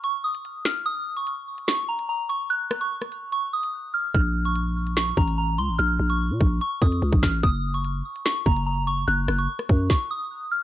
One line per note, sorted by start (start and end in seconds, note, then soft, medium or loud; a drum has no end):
0.04 0.21 C#6 medium
0.04 closed hi-hat medium
0.24 0.63 D#6 medium
0.35 closed hi-hat medium
0.45 closed hi-hat medium
0.65 0.83 F6 medium
0.65 finger snap loud
0.65 snare loud
0.65 open hi-hat medium
0.86 1.15 D#6 loud
0.86 closed hi-hat medium
1.17 1.65 C#6 medium
1.17 closed hi-hat medium
1.27 closed hi-hat medium
1.58 closed hi-hat medium
1.68 1.85 C#6 loud
1.68 finger snap loud
1.68 snare loud
1.68 closed hi-hat medium
1.88 2.06 A#5 medium
1.99 closed hi-hat medium
2.09 2.26 A#5 medium
2.29 2.47 C#6 medium
2.29 closed hi-hat loud
2.50 2.79 F#6 loud
2.50 closed hi-hat medium
2.71 cross-stick loud
2.81 3.29 C#6 medium
2.81 closed hi-hat medium
3.02 cross-stick medium
3.12 closed hi-hat medium
3.32 3.50 C#6 medium
3.32 closed hi-hat medium
3.53 3.92 D#6 medium
3.63 closed hi-hat medium
3.94 4.11 F6 medium
4.14 5.13 A#1 loud
4.14 4.43 F6 loud
4.14 kick loud
4.14 closed hi-hat medium
4.45 4.94 C#6 medium
4.45 closed hi-hat medium
4.56 closed hi-hat medium
4.87 closed hi-hat medium
4.96 5.14 C#6 medium
4.96 finger snap loud
4.96 snare loud
4.96 closed hi-hat medium
5.17 5.60 A1 loud
5.17 5.35 A#5 medium
5.17 kick medium
5.28 closed hi-hat medium
5.38 5.55 A#5 medium
5.58 5.70 C#2 loud
5.58 5.76 C6 medium
5.58 closed hi-hat loud
5.69 5.78 A1 loud
5.79 5.99 A#1 loud
5.79 6.08 F6 loud
5.79 closed hi-hat medium
5.99 6.32 A#1 loud
6.10 6.58 C#6 medium
6.10 closed hi-hat medium
6.30 6.40 A#2 loud
6.41 6.60 A#1 loud
6.41 kick loud
6.41 closed hi-hat medium
6.61 6.78 C#6 medium
6.61 closed hi-hat medium
6.82 7.01 F2 loud
6.82 7.20 D#6 medium
6.82 kick medium
6.92 closed hi-hat medium
7.02 7.12 C#2 loud
7.02 closed hi-hat medium
7.13 7.22 A#1 loud
7.13 kick medium
7.23 7.43 A1 loud
7.23 7.40 F6 medium
7.23 finger snap loud
7.23 kick loud
7.23 snare loud
7.23 open hi-hat medium
7.43 8.03 F#1 loud
7.43 7.72 D#6 loud
7.43 kick loud
7.43 closed hi-hat medium
7.74 8.22 C#6 medium
7.74 closed hi-hat medium
7.84 closed hi-hat medium
8.16 closed hi-hat medium
8.25 8.43 C#6 medium
8.25 finger snap loud
8.25 snare loud
8.25 closed hi-hat medium
8.46 9.05 F#1 loud
8.46 8.63 A#5 medium
8.46 kick loud
8.57 closed hi-hat medium
8.66 8.84 A#5 medium
8.87 9.04 C#6 medium
8.87 closed hi-hat loud
9.08 9.27 F#1 loud
9.08 9.37 F#6 loud
9.08 closed hi-hat medium
9.28 9.48 F#1 loud
9.28 cross-stick loud
9.38 9.87 C#6 medium
9.38 closed hi-hat medium
9.59 cross-stick medium
9.69 9.89 F#2 loud
9.69 kick medium
9.69 closed hi-hat medium
9.90 10.07 C#6 medium
9.90 kick loud
9.90 snare medium
10.11 10.49 D#6 medium
10.51 10.63 F6 medium